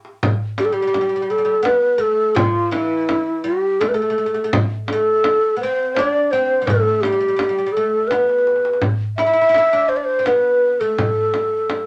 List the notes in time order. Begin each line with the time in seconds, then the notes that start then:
0.05 darbuka ka
0.23 frame drum, darbuka dum
0.58 G3 G4, darbuka tek, frame drum
0.65 A4
0.72 G3 G4
0.82 G3
0.87 G3
0.93 G3, darbuka tek, frame drum
1.01 G3
1.09 G3
1.16 G3
1.22 G3
1.30 G3 A4
1.38 G3
1.45 G3, darbuka ka
1.63 B3 B4, darbuka tek, frame drum
1.98 A3 A4, darbuka ka
2.35 F3 F4, frame drum, darbuka dum
2.71 E3 E4, darbuka tek, frame drum
3.09 darbuka tek, frame drum
3.44 G3 G4
3.64 darbuka ka
3.80 A3 A4, darbuka tek, frame drum
3.88 B4
3.94 A3 A4
4.02 A3
4.10 A3
4.18 A3
4.26 A3
4.34 A3
4.44 A3
4.53 frame drum, darbuka dum
4.87 A4, darbuka tek, frame drum
4.93 A3
5.24 darbuka tek, frame drum
5.57 B3 C5
5.63 C4
5.79 darbuka ka
5.95 D4 D5, darbuka tek, frame drum
6.31 C4 C5, darbuka ka
6.62 G3
6.67 A3 A4, frame drum, darbuka dum
7.01 G3 G4, darbuka tek, frame drum
7.12 G3
7.20 G3
7.28 G3
7.36 G3, frame drum
7.41 G3, darbuka tek
7.49 G3
7.58 G3
7.66 G3
7.72 A4
7.77 A3, darbuka ka
7.95 darbuka ka
8.08 B4, frame drum
8.12 B3, darbuka tek
8.21 darbuka ka
8.29 darbuka tek
8.38 darbuka ka
8.47 darbuka tek
8.56 darbuka ka
8.65 darbuka tek
8.73 darbuka ka
8.82 frame drum, darbuka dum
9.17 E4 E5, darbuka tek, frame drum
9.26 E4
9.33 E4
9.41 E4
9.49 E4
9.54 E4, darbuka tek, frame drum
9.73 D4
9.89 C5
9.96 D5
10.04 C5
10.09 darbuka ka
10.19 C4
10.26 B3 B4, darbuka tek, frame drum
10.64 darbuka ka
10.80 A3 A4
10.98 frame drum, darbuka dum
11.34 darbuka tek, frame drum
11.70 darbuka tek, frame drum